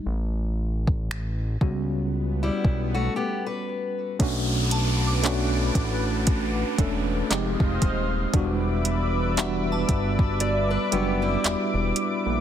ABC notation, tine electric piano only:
X:1
M:4/4
L:1/8
Q:"Swing 16ths" 1/4=58
K:Bm
V:1 name="Tine electric piano"
z3 [G,B,CF]4- [G,B,CF] | [A,CDF] z [A,CDF]2 z [A,CDA] [_A,=C_EG]2 | [G,B,DF] z [G,B,DF]2 z [G,B,DF]2 z |]